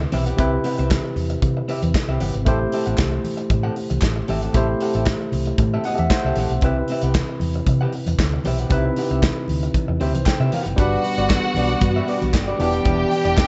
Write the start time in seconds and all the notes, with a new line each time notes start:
Already playing: C3 C4 E4 B4
0.01 muted clean electric guitar stroke
0.12 B1 C4 G4 B4 E5, open hi-hat, high conga
0.26 C4 G4 B4 F#5, closed hi-hat
0.37 C2 C3 C4 E4 G4 B4 E5, kick, closed hi-hat, muted conga, low conga
0.53 muted clean electric guitar stroke
0.64 C4 G4 B4 F#5, open hi-hat, muted conga
0.78 C2 C4 G4 B4 E5, closed hi-hat
0.90 muted clean electric guitar stroke, kick, snare, clap, closed hi-hat, muted conga, high conga
1.05 muted clean electric guitar stroke
1.16 E2, open hi-hat, muted conga, high conga, low conga
1.30 muted clean electric guitar stroke, closed hi-hat
1.42 C3, kick, closed hi-hat, muted conga, high conga, low conga
1.57 muted clean electric guitar stroke
1.68 C4 G4 B4 E5, open hi-hat, muted conga
1.82 E2, muted clean electric guitar stroke, closed hi-hat, high conga
1.94 muted clean electric guitar stroke, kick, snare, clap, closed hi-hat
2.08 C2 C4 G4 B4 E5
2.20 G1 C4 G4 B4 F#5, open hi-hat, muted conga, high conga
2.34 G#1, muted clean electric guitar stroke, closed hi-hat
2.45 A1 A3 C4 E4 G4 A4 C5 E5, kick, closed hi-hat, low conga
2.60 muted clean electric guitar stroke
2.72 C4 G4 A4 E5, open hi-hat, muted conga
2.86 A1 C4 G4 A4 F#5, closed hi-hat
2.97 C2, muted clean electric guitar stroke, kick, snare, clap, closed hi-hat, high conga
3.12 muted clean electric guitar stroke
3.24 open hi-hat, high conga, low conga
3.37 muted clean electric guitar stroke, closed hi-hat
3.50 A2, muted clean electric guitar stroke, kick, closed hi-hat, high conga, low conga
3.63 C4 G4 A4 F#5
3.76 muted clean electric guitar stroke, open hi-hat
3.90 C2, muted clean electric guitar stroke, closed hi-hat, high conga
4.01 A1, muted clean electric guitar stroke, kick, snare, clap, closed hi-hat
4.16 muted clean electric guitar stroke
4.28 G#1 C4 G4 A4 E5, open hi-hat, muted conga, high conga
4.42 C4 G4 A4 F#5, closed hi-hat
4.53 A1 A3 C4 E4 G4 C5, kick, closed hi-hat, muted conga, low conga
4.57 A4 E5
4.68 muted clean electric guitar stroke
4.80 C4 G4 A4 F#5, open hi-hat, muted conga
4.94 A1 C4 G4 A4 E5, closed hi-hat
5.06 muted clean electric guitar stroke, kick, snare, clap, closed hi-hat, muted conga, high conga
5.21 muted clean electric guitar stroke
5.32 C2, open hi-hat, high conga, low conga
5.46 muted clean electric guitar stroke, closed hi-hat
5.58 A2, muted clean electric guitar stroke, kick, closed hi-hat, high conga, low conga
5.74 C4 G4 A4 E5
5.84 C4 G4 A4 E5 F#5, open hi-hat
5.98 E2 E5, muted clean electric guitar stroke, closed hi-hat, high conga
6.10 C5, muted clean electric guitar stroke, kick, snare, clap, closed hi-hat
6.24 C2 C4 G4 A4 E5
6.36 A#1 C4 G4 A4, open hi-hat, muted conga, high conga
6.40 F#5
6.49 B1, muted clean electric guitar stroke, closed hi-hat
6.61 C2 C3 C4 E4 G4 B4, kick, closed hi-hat, low conga
6.65 B4 E5
6.78 muted clean electric guitar stroke
6.88 C4 G4 B4, open hi-hat, muted conga
6.92 E5
7.02 C2 C4 G4 B4 F#5, closed hi-hat
7.14 muted clean electric guitar stroke, kick, snare, clap, closed hi-hat, muted conga, high conga
7.29 muted clean electric guitar stroke
7.40 E2, open hi-hat, high conga, low conga
7.54 muted clean electric guitar stroke, closed hi-hat
7.66 C3, muted clean electric guitar stroke, kick, closed hi-hat, muted conga, high conga, low conga
7.81 C4 G4 B4 F#5
7.93 muted clean electric guitar stroke, open hi-hat, muted conga
8.06 E2, muted clean electric guitar stroke, closed hi-hat, high conga
8.19 D2, muted clean electric guitar stroke, kick, snare, clap, closed hi-hat
8.34 muted clean electric guitar stroke
8.44 B1 C4 G4 B4 E5, open hi-hat, muted conga, high conga
8.58 C4 G4 B4 F#5, closed hi-hat
8.69 C2 C3 C4 D#4 G4 B4, kick, closed hi-hat, low conga
8.74 E4 E5
8.86 muted clean electric guitar stroke
8.96 C4 G4 B4 F#5, open hi-hat, muted conga
9.10 C2 C4 G4 B4 E5, closed hi-hat
9.22 muted clean electric guitar stroke, kick, snare, clap, closed hi-hat, muted conga, high conga
9.36 muted clean electric guitar stroke
9.48 D2, open hi-hat, muted conga, high conga, low conga
9.63 muted clean electric guitar stroke, closed hi-hat
9.74 kick, closed hi-hat, muted conga, high conga, low conga
9.88 E2, muted clean electric guitar stroke
10.00 D2 C4 G4 B4 C5 E5, open hi-hat
10.14 C2, muted clean electric guitar stroke, closed hi-hat, high conga
10.26 G5, muted clean electric guitar stroke, kick, snare, clap, closed hi-hat
10.40 C3 C4 G4 B4 E5
10.52 C4 G4 B4 F#5, open hi-hat, muted conga, high conga
10.66 F#1, muted clean electric guitar stroke, closed hi-hat
10.76 G1 G3 B3 D4 F#4 B4 F#5, kick, closed hi-hat, low conga
10.80 D5
11.04 muted clean electric guitar stroke, open hi-hat, muted conga
11.18 G1 D4 F#4 B4 D5, closed hi-hat
11.30 muted clean electric guitar stroke, kick, snare, clap, closed hi-hat, high conga
11.45 muted clean electric guitar stroke
11.55 B1 D4 F#4 B4 D5, open hi-hat, muted conga, high conga, low conga
11.69 D4 F#4 B4 D5, closed hi-hat
11.81 G2, muted clean electric guitar stroke, kick, closed hi-hat, muted conga, high conga, low conga
11.96 D4 F#4 B4 E5
12.07 D4 F#4 B4 D5, open hi-hat
12.21 B1, muted clean electric guitar stroke, closed hi-hat, high conga
12.34 G1, muted clean electric guitar stroke, kick, snare, clap, closed hi-hat
12.48 D4 F#4 B4 D5
12.58 E1 E3 B3 D4 E4 G4 G5, open hi-hat, muted conga, high conga
12.62 D5
12.73 muted clean electric guitar stroke, closed hi-hat
12.84 E1 B3 E4 G4 D5, kick, closed hi-hat, low conga
13.11 muted clean electric guitar stroke, open hi-hat, muted conga
13.25 E1 B3 E4 G4 D5, closed hi-hat
13.37 muted clean electric guitar stroke, kick, snare, clap, closed hi-hat, high conga